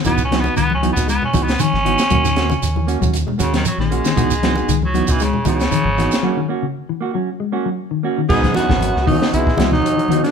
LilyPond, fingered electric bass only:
\new Staff \with { instrumentName = "Fingered electric bass" } { \clef bass \time 4/4 \key cis \dorian \tempo 4 = 116 cis,4 cis,8. cis,8 r16 cis,8 r16 gis,,8 r16 | dis,4 dis,8. dis,8 r16 dis,8 r16 ais,,8 r16 | cis,4 cis,8. cis,8 r16 cis,8 r16 gis,,8 r16 | r1 |
cis,16 cis16 r16 gis,,8 cis,8 r16 cis,8 cis,8 r4 | }